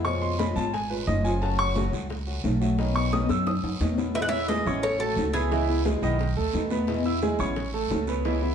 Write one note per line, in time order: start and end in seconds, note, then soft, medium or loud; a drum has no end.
0.00 0.50 F2 medium
0.04 0.37 B2 medium
0.04 0.37 F3 medium
0.04 0.38 G#3 medium
0.04 0.38 C#4 medium
0.04 0.39 F4 medium
0.04 0.21 C#6 medium
0.04 high bongo medium
0.04 high conga soft
0.04 long guiro medium
0.22 0.39 C6 loud
0.22 high bongo soft
0.22 high conga soft
0.38 0.55 B2 medium
0.38 0.55 F3 medium
0.38 0.56 G#3 medium
0.38 0.56 C#4 medium
0.38 0.55 F4 medium
0.38 0.56 B5 loud
0.38 high bongo medium
0.38 high conga medium
0.38 short guiro medium
0.56 1.04 G#1 loud
0.56 0.73 G#3 soft
0.56 0.73 C#4 soft
0.56 0.73 F4 medium
0.56 0.73 A5 loud
0.56 high bongo soft
0.56 high conga soft
0.56 short guiro medium
0.73 0.90 G#5 medium
0.73 muted steel-string acoustic guitar stroke medium
0.73 high bongo medium
0.73 high conga soft
0.73 long guiro medium
0.90 1.07 G#3 soft
0.90 1.07 C#4 soft
0.90 1.07 F4 soft
0.90 1.07 B4 medium
0.90 high bongo soft
0.90 high conga soft
1.07 1.87 F#1 loud
1.07 1.24 F3 medium
1.07 1.24 G#3 medium
1.07 1.24 C#4 medium
1.07 1.23 F4 medium
1.07 1.24 D#5 loud
1.07 high bongo soft
1.07 low bongo medium
1.07 high conga medium
1.07 short guiro medium
1.24 1.42 F3 medium
1.24 1.42 G#3 medium
1.24 1.41 C#4 medium
1.24 1.41 F4 medium
1.24 1.41 G#5 medium
1.24 short guiro medium
1.42 1.74 C#3 medium
1.42 1.74 F#3 medium
1.42 1.75 A3 medium
1.42 1.75 C#4 medium
1.42 1.76 F#4 medium
1.42 1.58 A5 medium
1.42 high bongo medium
1.42 high conga soft
1.42 long guiro medium
1.59 1.69 C#6 loud
1.59 high bongo soft
1.75 1.92 C#3 medium
1.75 1.92 F#3 medium
1.75 1.93 A3 medium
1.75 1.92 C#4 medium
1.75 1.91 F#4 medium
1.75 high bongo medium
1.75 high conga loud
1.75 short guiro medium
1.92 2.40 C#2 loud
1.92 2.09 A3 soft
1.92 2.09 C#4 medium
1.92 2.09 F#4 medium
1.92 high bongo soft
1.92 high conga soft
1.92 low conga medium
1.92 short guiro medium
2.09 muted steel-string acoustic guitar stroke medium
2.09 high bongo medium
2.09 high conga soft
2.09 long guiro medium
2.27 2.43 A3 soft
2.27 2.44 C#4 soft
2.27 2.43 F#4 medium
2.27 high bongo soft
2.27 high conga soft
2.43 3.24 B1 medium
2.43 2.60 F#3 medium
2.43 2.61 A3 medium
2.43 2.60 C#4 medium
2.43 2.60 F#4 medium
2.43 high bongo soft
2.43 low bongo medium
2.43 high conga medium
2.43 short guiro medium
2.61 2.78 F#3 medium
2.61 2.78 A3 medium
2.61 2.78 C#4 medium
2.61 2.78 F#4 medium
2.61 high conga medium
2.61 short guiro medium
2.78 3.11 B2 medium
2.78 3.12 D#3 medium
2.78 3.12 B3 medium
2.78 3.12 C#4 medium
2.78 high bongo medium
2.78 long guiro medium
2.96 3.12 C#6 medium
2.96 high bongo soft
2.96 high conga soft
3.12 3.29 B2 medium
3.12 3.29 D#3 medium
3.12 3.29 B3 medium
3.12 3.28 C#4 medium
3.12 3.29 D#6 loud
3.12 high bongo medium
3.12 high conga loud
3.12 short guiro medium
3.29 3.61 F#2 loud
3.29 3.45 D#3 soft
3.29 3.45 B3 soft
3.29 3.46 C#4 medium
3.29 3.46 E6 loud
3.29 high bongo loud
3.29 high conga soft
3.29 short guiro medium
3.46 4.02 D#6 medium
3.46 muted steel-string acoustic guitar stroke medium
3.46 low bongo loud
3.46 high conga soft
3.46 long guiro medium
3.63 3.79 F#2 medium
3.63 3.79 D#3 soft
3.63 3.80 B3 soft
3.63 3.80 C#4 soft
3.63 low bongo medium
3.63 high conga soft
3.80 4.60 E2 loud
3.80 3.97 B2 medium
3.80 3.97 D#3 medium
3.80 3.97 B3 medium
3.80 3.96 C#4 medium
3.80 low bongo medium
3.80 high conga medium
3.80 short guiro medium
3.97 4.15 D#3 medium
3.97 4.14 B3 medium
3.97 4.14 C#4 medium
3.97 low bongo medium
3.97 high conga medium
3.97 short guiro medium
4.14 4.31 B2 medium
4.14 4.32 E3 medium
4.14 4.32 G#3 medium
4.14 4.31 B3 medium
4.14 4.31 E4 medium
4.14 4.21 B4 medium
4.14 4.22 E5 loud
4.14 high bongo medium
4.14 high conga soft
4.14 long guiro medium
4.21 4.28 D#5 medium
4.21 4.28 F#5 medium
4.28 4.46 E4 medium
4.28 4.48 E4 medium
4.28 4.47 C#5 medium
4.28 4.48 E5 loud
4.28 4.46 E5 medium
4.28 high conga soft
4.32 4.48 E3 medium
4.32 4.49 G#3 medium
4.32 4.49 B3 medium
4.32 4.46 E6 medium
4.32 high bongo soft
4.48 4.66 E3 medium
4.48 4.63 G#3 medium
4.48 4.66 G#3 medium
4.48 4.66 B3 medium
4.48 4.65 E4 medium
4.48 4.63 G#4 medium
4.48 4.80 B4 medium
4.48 4.84 D#5 medium
4.48 4.64 G#5 medium
4.48 high bongo medium
4.48 high conga loud
4.48 short guiro medium
4.65 5.13 A1 loud
4.65 4.82 E3 medium
4.65 4.83 G#3 medium
4.65 4.83 B3 medium
4.65 4.94 C#4 medium
4.65 4.83 E4 medium
4.65 4.94 C#5 medium
4.65 4.95 C#6 medium
4.65 high bongo soft
4.65 high conga soft
4.65 low conga medium
4.65 short guiro medium
4.82 4.98 A4 medium
4.82 5.01 C#5 medium
4.82 muted steel-string acoustic guitar stroke medium
4.82 high bongo medium
4.82 high conga soft
4.82 long guiro medium
4.99 5.28 A3 medium
4.99 5.31 F#4 medium
4.99 5.32 A4 medium
4.99 5.29 A4 medium
4.99 5.29 A5 medium
4.99 high bongo soft
4.99 high conga soft
5.16 5.96 C#2 medium
5.16 5.51 E3 medium
5.16 5.51 A3 medium
5.16 5.51 C#4 medium
5.16 5.52 F#4 medium
5.16 high bongo soft
5.16 low bongo medium
5.16 high conga medium
5.16 short guiro medium
5.33 5.48 B3 medium
5.33 5.81 E4 medium
5.33 5.82 G#4 medium
5.33 5.48 B4 medium
5.33 5.48 B5 medium
5.33 short guiro medium
5.51 5.68 C#3 medium
5.51 5.79 E3 medium
5.51 5.68 E3 medium
5.51 5.68 G#3 medium
5.51 5.67 B3 medium
5.51 5.79 E4 medium
5.51 5.67 E4 medium
5.51 5.79 E5 medium
5.51 high bongo medium
5.51 high conga soft
5.51 long guiro medium
5.68 5.83 E3 medium
5.68 5.84 G#3 medium
5.68 5.85 B3 medium
5.68 5.85 E4 medium
5.68 high bongo soft
5.68 high conga soft
5.84 6.01 E3 medium
5.84 5.99 G#3 medium
5.84 6.01 G#3 medium
5.84 6.01 B3 medium
5.84 6.00 E4 medium
5.84 5.99 G#4 medium
5.84 6.00 G#5 medium
5.84 high bongo medium
5.84 high conga loud
5.84 short guiro medium
6.02 6.34 B1 medium
6.02 6.31 D#3 medium
6.02 6.19 E3 medium
6.02 6.19 G#3 medium
6.02 6.19 B3 medium
6.02 6.31 D#4 medium
6.02 6.19 E4 medium
6.02 6.31 D#5 loud
6.02 high bongo soft
6.02 high conga soft
6.02 short guiro medium
6.19 muted steel-string acoustic guitar stroke medium
6.19 high bongo medium
6.19 high conga soft
6.19 long guiro medium
6.36 6.52 D#2 medium
6.36 6.65 A3 medium
6.36 6.65 A4 medium
6.36 6.65 A5 medium
6.36 high bongo soft
6.36 high conga soft
6.53 7.33 E2 medium
6.53 6.87 D#3 soft
6.53 6.87 A3 medium
6.53 6.88 B3 medium
6.53 6.88 F#4 medium
6.53 high bongo soft
6.53 low bongo medium
6.53 high conga medium
6.53 short guiro medium
6.70 6.99 B3 medium
6.70 6.99 B4 medium
6.70 6.99 B5 medium
6.70 high conga medium
6.70 short guiro medium
6.87 7.04 B2 medium
6.87 7.04 E3 medium
6.87 7.04 G#3 medium
6.87 7.04 B3 medium
6.87 7.03 E4 medium
6.87 high bongo medium
6.87 high conga soft
6.87 long guiro medium
7.05 7.20 E3 medium
7.05 7.21 G#3 medium
7.05 7.21 B3 medium
7.05 7.21 E4 medium
7.05 7.19 E4 medium
7.05 7.19 E5 medium
7.05 7.20 E6 medium
7.05 high bongo soft
7.05 high conga soft
7.21 7.38 E3 medium
7.21 7.39 G#3 medium
7.21 7.36 G#3 medium
7.21 7.38 B3 medium
7.21 7.37 E4 medium
7.21 7.37 G#4 medium
7.21 7.37 G#5 medium
7.21 high bongo medium
7.21 high conga medium
7.21 short guiro medium
7.39 7.87 A1 medium
7.39 7.56 E3 medium
7.39 7.56 G#3 medium
7.39 7.56 B3 medium
7.39 7.67 C#4 medium
7.39 7.55 E4 medium
7.39 7.67 C#5 medium
7.39 7.68 C#6 medium
7.39 high bongo soft
7.39 high conga soft
7.39 low conga medium
7.39 short guiro medium
7.56 muted steel-string acoustic guitar stroke medium
7.56 high bongo medium
7.56 high conga soft
7.56 low conga medium
7.56 long guiro medium
7.73 8.01 A3 medium
7.73 8.02 A4 medium
7.73 8.02 A5 medium
7.73 high bongo soft
7.73 high conga soft
7.91 8.55 C#2 loud
7.91 8.24 E3 medium
7.91 8.25 A3 medium
7.91 8.25 C#4 medium
7.91 8.25 F#4 medium
7.91 high bongo soft
7.91 low bongo medium
7.91 high conga medium
7.91 short guiro medium
8.07 8.22 B3 medium
8.07 8.22 B4 medium
8.07 8.22 B5 medium
8.07 short guiro medium
8.25 8.41 C#3 medium
8.25 8.41 E3 medium
8.25 8.53 E3 medium
8.25 8.41 G#3 medium
8.25 8.41 B3 medium
8.25 8.53 E4 medium
8.25 8.41 E4 medium
8.25 8.53 E5 medium
8.25 high bongo medium
8.25 high conga soft
8.25 long guiro medium
8.42 8.55 E3 medium
8.42 8.55 G#3 medium
8.42 8.55 B3 medium
8.42 8.55 E4 medium
8.42 high bongo soft
8.42 high conga soft